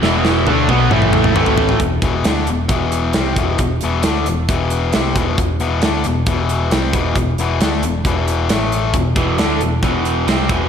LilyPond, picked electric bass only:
\new Staff \with { instrumentName = "Picked electric bass" } { \clef bass \time 4/4 \key e \minor \tempo 4 = 134 e,,4 d,8 b,,8 a,,4 a,,4 | e,,8 e,,8 d,8 e,,8 e,,4 c,8 e,,8 | e,,8 e,,8 d,8 e,,8 e,,4 c,8 e,,8 | e,,8 e,,8 d,8 e,,8 e,,4 c,8 e,,8 |
e,,8 e,,8 d,8 e,,8 e,,4 a,,4 | e,,8 e,,8 d,8 e,,8 e,,4 c,8 e,,8 | }